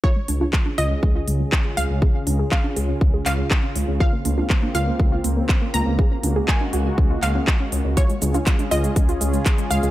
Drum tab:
HH |--o---o---o---o-|--o---o---o---o-|--o---o---o---o-|--o---o---o---o-|
SH |----------------|----------------|----------------|----------------|
CP |----x-------x---|----x-----x-x---|----x-------x---|----x-----x-x---|
CG |--ooOo----------|--o-Oo----------|--ooOo----------|--o-Oo----------|
BD |o---o---o---o---|o---o---o---o---|o---o---o---o---|o---o---o---o---|

HH |xxoxxxoxxxoxxxox|
SH |xxxxxxxxxxxxxxxx|
CP |----x-------x---|
CG |--ooOo----------|
BD |o---o---o---o---|